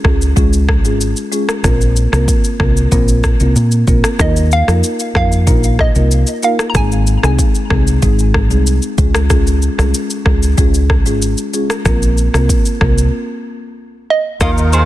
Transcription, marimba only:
0.04 0.29 G#3 medium
0.04 0.29 C#4 medium
0.04 0.29 F4 medium
0.04 0.29 G#4 medium
0.36 0.61 G#3 medium
0.36 0.61 C#4 medium
0.36 0.61 F4 medium
0.36 0.61 G#4 loud
0.85 1.08 G#3 medium
0.85 1.09 C#4 medium
0.85 1.09 F4 medium
0.85 1.09 G#4 medium
1.32 1.56 G#3 medium
1.32 1.56 C#4 medium
1.32 1.56 F4 medium
1.32 1.57 G#4 medium
1.64 2.09 A#3 medium
1.64 2.09 C4 medium
1.64 2.09 F4 medium
1.64 2.09 A#4 loud
2.12 2.36 A#3 medium
2.12 2.36 C4 medium
2.12 2.36 F4 medium
2.12 2.36 A#4 medium
2.60 2.84 A#3 medium
2.60 2.84 C4 medium
2.60 2.84 F4 medium
2.60 2.84 A#4 medium
2.91 3.16 A#3 medium
2.91 3.16 C4 medium
2.91 3.16 F4 medium
2.91 3.16 A#4 loud
3.40 3.64 A#3 medium
3.40 3.64 C4 medium
3.40 3.64 F4 medium
3.40 3.64 A#4 medium
3.87 4.12 A#3 medium
3.87 4.12 C4 medium
3.87 4.12 F4 medium
3.87 4.12 A#4 medium
4.19 4.64 A#3 medium
4.19 4.64 D#4 medium
4.19 4.64 F4 medium
4.19 4.64 A#4 loud
4.68 4.92 A#3 medium
4.68 4.92 D#4 medium
4.68 4.92 F4 medium
4.68 4.92 A#4 medium
5.15 5.39 A#3 medium
5.15 5.40 D#4 medium
5.15 5.40 F4 medium
5.15 5.40 A#4 medium
5.47 5.71 A#3 medium
5.47 5.71 D#4 medium
5.47 5.72 F4 medium
5.47 5.72 A#4 loud
5.96 6.19 A#3 medium
5.96 6.19 D#4 medium
5.96 6.19 F4 medium
5.96 6.20 A#4 medium
6.43 6.67 A#3 medium
6.43 6.67 D#4 medium
6.43 6.67 F4 medium
6.43 6.67 A#4 medium
6.75 7.19 G#3 medium
6.75 7.19 C4 medium
6.75 7.19 D#4 medium
6.75 7.20 G#4 loud
7.23 7.47 G#3 medium
7.23 7.47 C4 medium
7.23 7.47 D#4 medium
7.23 7.47 G#4 medium
7.70 7.95 G#3 medium
7.70 7.95 C4 medium
7.70 7.95 D#4 medium
7.70 7.95 G#4 medium
8.02 8.27 G#3 medium
8.02 8.27 C4 medium
8.02 8.27 D#4 medium
8.02 8.27 G#4 loud
8.51 8.74 G#3 medium
8.51 8.75 C4 medium
8.51 8.75 D#4 medium
8.51 8.75 G#4 medium
8.98 9.22 G#3 medium
8.98 9.22 C#4 medium
8.98 9.23 F4 medium
8.98 9.23 G#4 medium
9.30 9.75 G#3 medium
9.30 9.75 C#4 medium
9.30 9.75 F4 medium
9.30 9.75 G#4 loud
9.78 10.02 G#3 medium
9.78 10.02 C#4 medium
9.78 10.02 F4 medium
9.78 10.02 G#4 medium
10.26 10.50 G#3 medium
10.26 10.50 C#4 medium
10.26 10.50 F4 medium
10.26 10.50 G#4 medium
10.58 10.82 G#3 medium
10.58 10.82 C#4 medium
10.58 10.82 F4 medium
10.58 10.82 G#4 loud
11.06 11.30 G#3 medium
11.06 11.30 C#4 medium
11.06 11.30 F4 medium
11.06 11.30 G#4 medium
11.53 11.78 G#3 medium
11.53 11.78 C#4 medium
11.53 11.78 F4 medium
11.53 11.78 G#4 medium
11.85 12.30 A#3 medium
11.85 12.30 C4 medium
11.85 12.30 F4 medium
11.85 12.30 A#4 medium
12.34 12.58 A#3 medium
12.34 12.58 C4 medium
12.34 12.58 F4 medium
12.34 12.58 A#4 medium
12.81 13.05 A#3 medium
12.81 13.06 C4 medium
12.81 13.06 F4 medium
12.81 13.06 A#4 medium
14.41 14.85 A#3 medium
14.41 14.85 D#4 medium
14.41 14.85 F4 medium
14.41 14.85 A#4 loud

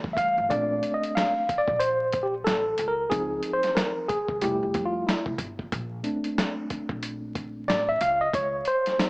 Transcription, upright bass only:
0.38 0.48 G1 medium
0.51 0.77 A#1 loud
1.68 2.42 A#1 medium
2.46 2.72 A1 medium
2.79 3.05 C#2 loud
3.12 3.38 C#2 loud
4.29 4.39 C2 medium
4.43 4.58 F1 loud
4.62 4.72 F1 medium
4.75 5.01 F2 loud
5.26 5.37 C2 medium
5.39 5.65 G1 medium
5.73 5.98 A#1 loud
6.89 7.64 A#1 medium
7.68 7.94 A1 medium
8.01 8.27 C#2 loud
8.34 8.59 C#2 loud

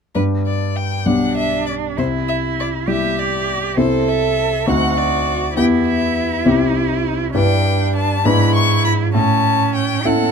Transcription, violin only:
0.15 0.23 B4 medium
0.46 0.77 D5 medium
0.76 1.07 G5 medium
1.06 1.36 F#5 medium
1.37 1.66 E5 medium
1.66 1.74 D5 medium
1.98 2.06 C5 medium
2.28 2.36 E5 medium
2.60 2.68 D5 medium
2.89 3.20 E5 medium
3.19 3.76 D5 medium
3.77 4.10 C5 medium
4.08 4.70 E5 medium
4.69 4.99 F#5 medium
4.97 5.56 D5 medium
5.57 5.65 G5 medium
5.87 6.45 E5 medium
7.35 7.92 G5 medium
7.96 8.27 A5 medium
8.25 8.54 B5 medium
8.55 8.84 C#6 medium
8.85 8.93 B5 medium
9.14 9.73 A5 medium
9.75 10.08 G5 medium
10.06 10.31 F#5 medium

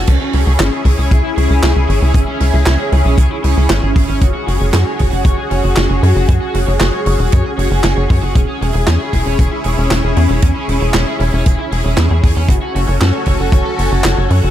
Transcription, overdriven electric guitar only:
0.08 0.12 C#4 medium
0.21 0.31 C#4 medium
0.34 0.38 C#4 loud
0.47 0.51 G#4 loud
0.59 0.66 C#4 medium
0.72 0.79 G#4 medium
0.85 0.92 G#4 medium
0.98 1.08 C#4 loud
1.11 1.21 G#4 medium
1.24 1.28 E4 loud
1.37 1.47 G#4 loud
1.50 1.60 C#4 medium
1.63 1.69 C#4 medium
1.76 1.82 G#4 medium
1.89 1.95 G#4 medium
2.02 2.12 C#4 loud
2.15 2.19 C#4 medium
2.28 2.37 C#4 medium
2.41 2.45 C#4 loud
2.53 2.57 G#4 loud
2.66 2.73 C#4 medium
2.79 2.86 G#4 medium
2.92 2.99 G#4 medium
3.05 3.15 C#4 loud
3.18 3.28 G#4 medium
3.31 3.35 E4 loud
3.44 3.54 G#4 loud
3.57 3.67 C#4 medium
3.70 3.76 C#4 medium
3.83 3.89 G#4 medium
3.96 4.02 G#4 medium
4.09 4.18 C#4 loud
4.22 4.26 F#4 medium
4.35 4.44 F#4 medium
4.48 4.51 F#4 loud
4.61 4.64 C#5 loud
4.73 4.80 F#4 medium
4.86 4.93 C#5 medium
4.99 5.06 C#5 medium
5.12 5.22 F#4 loud
5.25 5.35 C#5 medium
5.38 5.42 G#4 loud
5.51 5.61 C#5 loud
5.64 5.74 F#4 medium
5.77 5.83 F#4 medium
5.90 5.96 C#5 medium
6.03 6.09 C#5 medium
6.16 6.25 F#4 loud
6.29 6.33 F#4 medium
6.42 6.51 F#4 medium
6.55 6.58 F#4 loud
6.67 6.71 C#5 loud
6.80 6.87 F#4 medium
6.93 7.00 C#5 medium
7.06 7.13 C#5 medium
7.19 7.29 F#4 loud
7.32 7.42 C#5 medium
7.45 7.49 G#4 loud
7.58 7.68 C#5 loud
7.71 7.81 F#4 medium
7.84 7.90 F#4 medium
7.97 8.03 C#5 medium
8.10 8.16 C#5 medium
8.23 8.32 F#4 loud
8.36 8.39 C#4 medium
8.49 8.58 C#4 medium
8.61 8.65 C#4 loud
8.74 8.78 G#4 loud
8.87 8.94 C#4 medium
9.00 9.07 G#4 medium
9.13 9.20 G#4 medium
9.26 9.36 C#4 loud
9.39 9.49 G#4 medium
9.52 9.56 E4 loud
9.65 9.75 G#4 loud
9.78 9.88 C#4 medium
9.91 9.97 C#4 medium
10.04 10.10 G#4 medium
10.17 10.23 G#4 medium
10.30 10.39 C#4 loud
10.43 10.46 C#4 medium
10.56 10.65 C#4 medium
10.68 10.72 C#4 loud
10.81 10.85 G#4 loud
10.94 11.01 C#4 medium
11.07 11.14 G#4 medium
11.20 11.27 G#4 medium
11.33 11.43 C#4 loud
11.46 11.56 G#4 medium
11.59 11.63 E4 loud
11.72 11.81 G#4 loud
11.85 11.94 C#4 medium
11.98 12.04 C#4 medium
12.11 12.17 G#4 medium
12.24 12.30 G#4 medium
12.36 12.46 C#4 loud
12.49 12.53 F#4 medium
12.62 12.72 F#4 medium
12.75 12.79 F#4 loud
12.88 12.92 C#5 loud
13.01 13.07 F#4 medium
13.14 13.20 C#5 medium
13.27 13.33 C#5 medium
13.40 13.50 F#4 loud
13.53 13.62 C#5 medium
13.66 13.70 A4 loud
13.78 13.88 C#5 loud
13.91 14.01 F#4 medium
14.04 14.11 F#4 medium
14.17 14.24 C#5 medium
14.30 14.37 C#5 medium
14.43 14.51 F#4 loud

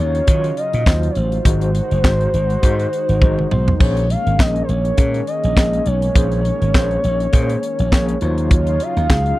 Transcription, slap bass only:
0.00 0.20 D#2 medium
0.28 0.50 D#3 loud
0.74 0.83 A#2 medium
0.86 1.08 D#2 medium
1.16 1.38 A1 loud
1.45 1.79 G#1 loud
1.91 2.01 F#1 medium
2.04 2.26 G#1 loud
2.34 2.55 G#1 medium
2.63 2.85 G#2 loud
3.09 3.18 G#1 medium
3.22 3.44 G#1 medium
3.51 3.73 B1 medium
3.81 4.15 A#1 loud
4.26 4.36 G#1 medium
4.39 4.61 A#1 medium
4.69 4.91 A#1 medium
4.98 5.20 A#2 loud
5.44 5.54 A#1 medium
5.57 5.79 A#1 medium
5.86 6.08 B1 medium
6.16 6.50 A#1 loud
6.61 6.71 G#1 medium
6.75 6.96 A#1 loud
7.04 7.26 A#1 medium
7.33 7.55 A#2 loud
7.79 7.89 A#1 medium
7.92 8.14 A#1 medium
8.22 8.78 D#2 medium
8.97 9.06 D#2 medium
9.10 9.32 C#2 loud

